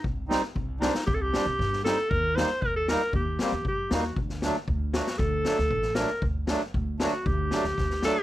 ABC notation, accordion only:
X:1
M:4/4
L:1/16
Q:1/4=116
K:none
V:1 name="Accordion"
z2 [G,C_E] z3 [G,CD] z3 [G,CD] z3 [G,CE] z | z2 [G,_B,_E] z3 [G,B,E] z3 [G,B,C] z3 [G,B,E] z | z2 [^F,A,D] z3 [F,A,D] z3 [F,A,D] z3 [F,A,D] z | z2 [^F,A,D] z3 [F,A,D] z3 [F,A,D] z3 [F,A,D] z |]